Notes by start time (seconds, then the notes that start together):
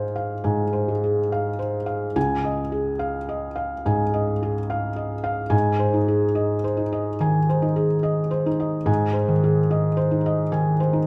Already playing: G#2 G#4 C5 F5 G#5
0.16 F5
0.44 G#2 G#5
0.73 C5
0.88 G#3
1.04 G#4
1.32 F5
1.59 C5
1.86 F5
2.16 C#2 G#5
2.45 D#5
2.72 G#4
2.99 F5
3.29 D#5
3.56 F5
3.86 G#2 G#5
4.14 D#5
4.43 G#4
4.70 F5
4.96 D#5
5.24 F5
5.50 G#2 G#5
5.79 C5
5.94 D#4
6.08 G#4
6.35 D#5
6.64 C5
6.77 D#4
6.92 D#5
7.20 D#3 G#5
7.49 C5
7.62 D#4
7.76 G#4
8.03 D#5
8.31 C5
8.46 D#4
8.60 D#5
8.86 G#2 G#5
9.13 C5
9.28 D#3
9.44 G#4
9.71 D#5
9.97 C5
10.11 D#4
10.26 D#5
10.52 D#3 G#5
10.80 C5
10.93 D#4